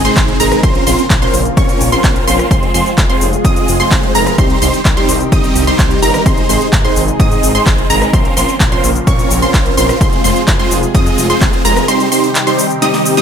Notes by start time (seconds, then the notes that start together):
Already playing: C3 D#3 G#3 D#4 G#4
0.05 G#3 C4 D#4 G#4 C5 C6, closed hi-hat, shaker
0.17 G#1, kick, clap, closed hi-hat, shaker
0.28 closed hi-hat
0.40 G#1 G#3 C4 D#4 G#4 A#4 A#5, open hi-hat, shaker
0.52 cross-stick, closed hi-hat, shaker
0.63 A#1 C#3 F3 A#3 C4 C#4 F4 A#4 C5 C6, kick, closed hi-hat, shaker
0.75 closed hi-hat
0.87 A#1 C4 C#4 F4 A#4 C5 C6, open hi-hat, shaker
0.99 closed hi-hat, shaker
1.10 A#1, kick, clap, closed hi-hat, shaker
1.22 C4 C#4 F4 A#4 C5 C6, closed hi-hat
1.34 A#1, open hi-hat, shaker
1.46 closed hi-hat, shaker
1.57 A#2 C4 C#4 F4 A#4 C#5 C#6, kick, closed hi-hat, shaker
1.69 closed hi-hat, shaker
1.81 A#1, open hi-hat, shaker
1.92 C4 C#4 F4 A#4 C5 C6, closed hi-hat, shaker
2.04 A#1, kick, clap, closed hi-hat, shaker
2.16 closed hi-hat
2.27 A#1 C4 C#4 F4 A#4 C5 C6, open hi-hat, shaker
2.39 cross-stick, closed hi-hat, shaker
2.51 F1 C3 G#3 C4 F4 G#4 C5 C6, kick, closed hi-hat, shaker
2.63 closed hi-hat
2.74 F1 G#3 C4 F4 G#4 C5 C6, open hi-hat, shaker
2.86 closed hi-hat, shaker
2.98 F1, kick, clap, closed hi-hat, shaker
3.09 G#3 C4 F4 G#4 C5 C6, closed hi-hat
3.21 F1, open hi-hat, shaker
3.33 closed hi-hat, shaker
3.45 F2 G#3 C4 F4 G#4 D#5 D#6, kick, closed hi-hat, shaker
3.56 closed hi-hat, shaker
3.68 F1, open hi-hat, shaker
3.80 G#3 C4 F4 G#4 C5 C6, closed hi-hat, shaker
3.91 F1, kick, clap, closed hi-hat, shaker
4.03 closed hi-hat
4.15 F1 G#3 C4 F4 G#4 A#4 A#5, open hi-hat, shaker
4.27 cross-stick, closed hi-hat, shaker
4.38 C2 D#3 G3 C4 D#4 G4 C6, kick, closed hi-hat, shaker
4.50 closed hi-hat
4.62 C2 G3 C4 D#4 G4 C5 C6, open hi-hat, shaker
4.74 closed hi-hat, shaker
4.85 C2, kick, clap, closed hi-hat, shaker
4.97 G3 C4 D#4 G4 C5 C6, closed hi-hat
5.09 C2, open hi-hat, shaker
5.20 closed hi-hat, shaker
5.32 G1 G3 C4 D#4 G4 D#5 D#6, kick, closed hi-hat, shaker
5.44 closed hi-hat, shaker
5.56 C2, open hi-hat, shaker
5.67 G3 C4 D#4 G4 C5 C6, closed hi-hat, shaker
5.79 C2, kick, clap, closed hi-hat, shaker
5.91 closed hi-hat
6.02 G1 G3 C4 D#4 G4 A#4 A#5, open hi-hat, shaker
6.14 cross-stick, closed hi-hat, shaker
6.26 G#1 G#3 C4 D#4 G#4 C5 C6, kick, closed hi-hat, shaker
6.38 closed hi-hat
6.49 G#1 G#3 C4 D#4 G#4 C5 C6, open hi-hat, shaker
6.61 closed hi-hat, shaker
6.73 G#1, kick, clap, closed hi-hat, shaker
6.84 G#3 C4 D#4 G#4 C5 C6, closed hi-hat
6.96 G#1, open hi-hat, shaker
7.08 closed hi-hat, shaker
7.20 G#2 G#3 C4 D#4 G#4 D#5 D#6, kick, closed hi-hat, shaker
7.32 closed hi-hat, shaker
7.43 G#1, open hi-hat, shaker
7.55 G#3 C4 D#4 G#4 C5 C6, closed hi-hat, shaker
7.67 G#1, kick, clap, closed hi-hat, shaker
7.78 closed hi-hat
7.90 G#1 G#3 C4 D#4 G#4 A#4 A#5, open hi-hat, shaker
8.02 cross-stick, closed hi-hat, shaker
8.13 A#1 C#3 F3 A#3 C4 C#4 F4 A#4 C5 C6, kick, closed hi-hat, shaker
8.25 closed hi-hat
8.37 A#1 C4 C#4 F4 A#4 C5 C6, open hi-hat, shaker
8.49 closed hi-hat, shaker
8.60 A#1, kick, clap, closed hi-hat, shaker
8.72 C4 C#4 F4 A#4 C5 C6, closed hi-hat
8.84 A#1, open hi-hat, shaker
8.95 closed hi-hat, shaker
9.07 A#2 C4 C#4 F4 A#4 C#5 C#6, kick, closed hi-hat, shaker
9.19 closed hi-hat, shaker
9.31 A#1, open hi-hat, shaker
9.42 C4 C#4 F4 A#4 C5 C6, closed hi-hat, shaker
9.54 A#1, kick, clap, closed hi-hat, shaker
9.66 closed hi-hat
9.77 A#1 C4 C#4 F4 A#4 C5 C6, open hi-hat, shaker
9.89 cross-stick, closed hi-hat, shaker
10.01 F1 C3 G#3 C4 F4 G#4 C5 C6, kick, closed hi-hat, shaker
10.13 closed hi-hat
10.24 F1 G#3 C4 F4 G#4 C5 C6, open hi-hat, shaker
10.36 closed hi-hat, shaker
10.48 F1, kick, clap, closed hi-hat, shaker
10.59 G#3 C4 F4 G#4 C5 C6, closed hi-hat
10.71 F1, open hi-hat, shaker
10.83 closed hi-hat, shaker
10.95 F2 G#3 C4 F4 G#4 D#5 D#6, kick, closed hi-hat, shaker
11.06 closed hi-hat, shaker
11.18 F1, open hi-hat, shaker
11.30 G#3 C4 F4 G#4 C5 C6, closed hi-hat, shaker
11.41 F1, kick, clap, closed hi-hat, shaker
11.53 closed hi-hat
11.65 F1 G#3 C4 F4 G#4 A#4 A#5, open hi-hat, shaker
11.77 cross-stick, closed hi-hat, shaker
11.88 C3 D#3 G3 C4 D#4 G4 C5 C6, closed hi-hat, shaker
12.00 closed hi-hat, shaker
12.12 G3 C4 D#4 G4 C5 C6, open hi-hat, shaker
12.24 closed hi-hat, shaker
12.35 clap, closed hi-hat, shaker
12.47 G3 C4 D#4 G4 C5 C6, closed hi-hat, shaker
12.59 open hi-hat, shaker
12.70 closed hi-hat, shaker
12.82 G3 C4 D#4 G4 D#5 D#6, snare, closed hi-hat, shaker
12.94 snare, open hi-hat, shaker
13.06 open hi-hat, shaker
13.17 G3 C4 D#4 G4 D#5 D#6, snare, closed hi-hat, shaker